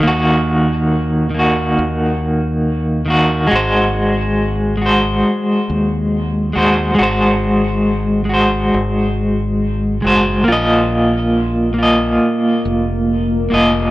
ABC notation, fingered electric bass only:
X:1
M:4/4
L:1/8
Q:1/4=69
K:Abdor
V:1 name="Fingered electric bass" clef=bass
E,,4 E,,4 | A,,,4 z E,,2 E,, | A,,,4 A,,,3 G,,, | B,,,4 z F,,,2 F,,, |]